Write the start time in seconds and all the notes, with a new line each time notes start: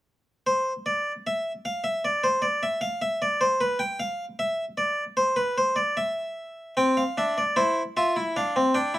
0.47 C5
0.86 D5
1.27 E5
1.65 F5
1.84 E5
2.05 D5
2.24 C5
2.42 D5
2.63 E5
2.81 F5
3.02 E5
3.22 D5
3.41 C5
3.61 B4
3.79 G5
4.00 F5
4.39 E5
4.78 D5
5.17 C5
5.36 B4
5.58 C5
5.76 D5
5.97 E5
6.77 C4 G5
6.97 F5
7.18 D4 E5
7.38 D5
7.56 E4 C5
7.97 F4 E5
8.16 E4
8.36 D4 F5
8.56 C4
8.74 D4 G5
8.94 E4